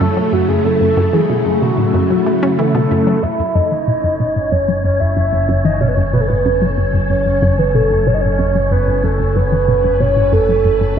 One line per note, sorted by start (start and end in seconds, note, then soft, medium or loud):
0.00 0.08 F#2 loud
0.00 3.22 C#3 medium
0.00 3.23 F#3 medium
0.00 3.23 A3 medium
0.00 3.26 A3 medium
0.00 3.23 E4 medium
0.00 3.25 E4 medium
0.00 0.34 A4 loud
0.17 0.28 F#3 medium
0.33 0.44 F#2 medium
0.33 0.50 F#4 medium
0.49 0.56 F#2 medium
0.49 0.66 G#4 medium
0.65 0.69 F#2 medium
0.65 1.15 A4 medium
0.81 0.92 F#2 medium
0.97 1.05 F#2 loud
1.13 1.21 E3 medium
1.13 1.63 G#4 medium
1.30 1.41 B2 medium
1.46 1.53 F#2 medium
1.62 1.73 B2 medium
1.62 2.58 F#4 medium
1.78 1.89 A2 medium
1.94 2.01 F#2 loud
2.10 2.21 F#3 medium
2.26 2.31 A3 medium
2.43 2.54 C#4 loud
2.59 2.66 E3 loud
2.59 3.24 A4 loud
2.75 2.79 B2 loud
2.91 2.95 F#2 medium
3.07 3.14 F#3 medium
3.23 10.99 F#1 medium
3.23 3.28 F#2 medium
3.23 10.99 C#3 medium
3.23 10.99 C#4 medium
3.23 10.99 C#5 medium
3.23 3.56 E5 loud
3.39 3.50 F#2 medium
3.55 3.63 F#2 loud
3.55 4.53 D#5 loud
3.71 3.79 E3 medium
3.71 10.99 F#3 medium
3.88 3.99 B2 medium
4.04 4.11 F#2 medium
4.20 4.31 B2 medium
4.20 9.39 A4 medium
4.36 4.47 A2 medium
4.52 4.60 F#2 loud
4.52 4.83 C#5 loud
4.68 4.79 F#3 medium
4.84 4.95 F#2 medium
4.84 5.01 C#5 medium
5.00 5.08 F#2 medium
5.00 5.64 E5 loud
5.06 10.99 E4 medium
5.17 5.21 F#2 medium
5.33 5.44 F#2 medium
5.49 5.56 F#2 loud
5.65 5.72 E3 medium
5.65 5.82 D#5 medium
5.81 5.92 B2 medium
5.81 5.90 C#5 medium
5.88 5.96 B4 medium
5.95 6.05 F#2 medium
5.95 6.13 C#5 medium
6.13 6.24 B2 medium
6.13 6.22 B4 medium
6.21 6.29 A4 medium
6.27 6.41 A2 medium
6.27 6.78 B4 medium
6.45 6.53 F#2 loud
6.62 6.73 F#3 medium
6.78 6.89 F#2 medium
6.94 7.01 F#2 medium
7.10 7.14 F#2 medium
7.10 7.60 C#5 loud
7.26 7.37 F#2 medium
7.42 7.50 F#2 loud
7.58 7.66 E3 medium
7.58 7.76 B4 medium
7.75 7.86 B2 medium
7.75 8.09 A4 medium
7.91 7.98 F#2 medium
8.07 8.18 B2 medium
8.07 8.16 C#5 medium
8.14 8.23 D#5 medium
8.21 8.34 A2 medium
8.21 8.71 C#5 loud
8.39 8.46 F#2 loud
8.55 8.66 F#3 medium
8.71 8.83 F#2 medium
8.71 9.05 B4 medium
8.87 8.95 F#2 medium
9.04 9.08 F#2 medium
9.04 9.38 A4 medium
9.20 9.31 F#2 medium
9.36 9.43 F#2 loud
9.36 10.99 B4 medium
9.36 10.02 B4 loud
9.52 9.59 E3 medium
9.68 9.79 B2 medium
9.84 9.92 F#2 medium
10.00 10.12 B2 medium
10.00 10.34 C#5 loud
10.16 10.28 A2 medium
10.32 10.40 F#2 loud
10.32 10.99 A4 loud
10.49 10.60 F#3 medium
10.65 10.76 F#2 medium
10.81 10.88 F#2 medium